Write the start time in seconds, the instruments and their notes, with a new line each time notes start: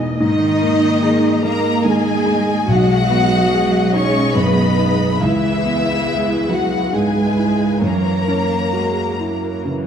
Already playing: grand piano E2 B2 B3 D#4 G#4, viola section B3 D#5
0.19 grand piano G#2, cello section D#3, viola section A#3, violin section D#4 D#5
0.61 grand piano A#3
1.02 grand piano G#4
1.43 cello section A#3, grand piano D#4, violin section A#4 A#5
1.84 grand piano D#3, cello section G#3, violin section G#4 G#5
2.25 grand piano D#4
2.68 grand piano B1, cello section F#3, viola section G#3 D#5, violin section F#4 F#5
3.10 grand piano B3
3.53 grand piano G#4
3.94 cello section C#4, grand piano D#4, violin section C#5 C#6
4.35 grand piano F#2, cello section B3, violin section B4 B5
4.78 grand piano D#4
5.20 grand piano C#2, cello section E3, viola section G#3 B4, violin section E4 E5
5.64 grand piano B3
6.07 grand piano G#4
6.50 cello section F#3, grand piano E4, violin section F#4 F#5
6.93 grand piano G#2, viola section G#3 B4, cello section G#3, violin section G#4 G#5
7.37 grand piano E4
7.82 grand piano F#2, viola section E3 C#5, cello section A#3, violin section A#4 A#5
8.28 grand piano C#4
8.73 viola section G#3, grand piano F#4
9.20 viola section F#3, grand piano E4
9.65 grand piano C#3, viola section E3